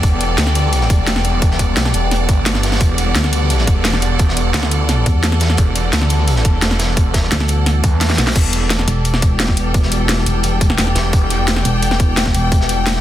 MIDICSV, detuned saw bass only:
0, 0, Header, 1, 2, 480
1, 0, Start_track
1, 0, Key_signature, 1, "minor"
1, 0, Tempo, 346821
1, 46, Time_signature, 4, 2, 24, 8
1, 18004, End_track
2, 0, Start_track
2, 0, Title_t, "Detuned saw bass"
2, 0, Program_c, 0, 39
2, 45, Note_on_c, 0, 28, 96
2, 506, Note_off_c, 0, 28, 0
2, 525, Note_on_c, 0, 38, 99
2, 1226, Note_off_c, 0, 38, 0
2, 1245, Note_on_c, 0, 28, 98
2, 1946, Note_off_c, 0, 28, 0
2, 1965, Note_on_c, 0, 28, 96
2, 2426, Note_off_c, 0, 28, 0
2, 2446, Note_on_c, 0, 35, 102
2, 2666, Note_off_c, 0, 35, 0
2, 2686, Note_on_c, 0, 28, 103
2, 3147, Note_off_c, 0, 28, 0
2, 3165, Note_on_c, 0, 31, 101
2, 3866, Note_off_c, 0, 31, 0
2, 3885, Note_on_c, 0, 28, 96
2, 4346, Note_off_c, 0, 28, 0
2, 4365, Note_on_c, 0, 38, 100
2, 5066, Note_off_c, 0, 38, 0
2, 5085, Note_on_c, 0, 28, 99
2, 5786, Note_off_c, 0, 28, 0
2, 5805, Note_on_c, 0, 28, 97
2, 6266, Note_off_c, 0, 28, 0
2, 6285, Note_on_c, 0, 38, 95
2, 6986, Note_off_c, 0, 38, 0
2, 7726, Note_on_c, 0, 28, 99
2, 8186, Note_off_c, 0, 28, 0
2, 8205, Note_on_c, 0, 38, 98
2, 8906, Note_off_c, 0, 38, 0
2, 8926, Note_on_c, 0, 28, 99
2, 9626, Note_off_c, 0, 28, 0
2, 9645, Note_on_c, 0, 28, 100
2, 10106, Note_off_c, 0, 28, 0
2, 10845, Note_on_c, 0, 40, 95
2, 11306, Note_off_c, 0, 40, 0
2, 11326, Note_on_c, 0, 35, 99
2, 11546, Note_off_c, 0, 35, 0
2, 11565, Note_on_c, 0, 28, 99
2, 12266, Note_off_c, 0, 28, 0
2, 15165, Note_on_c, 0, 28, 92
2, 15386, Note_off_c, 0, 28, 0
2, 15405, Note_on_c, 0, 28, 97
2, 16106, Note_off_c, 0, 28, 0
2, 18004, End_track
0, 0, End_of_file